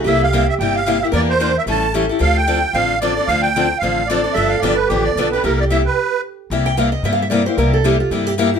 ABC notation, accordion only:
X:1
M:4/4
L:1/8
Q:"Swing" 1/4=223
K:Cmix
V:1 name="Accordion"
e f2 e g f2 e | d c2 e a2 z2 | f g3 f2 d2 | f g3 f2 d2 |
e f d =B G d2 B | B d e =B3 z2 | z8 | z8 |]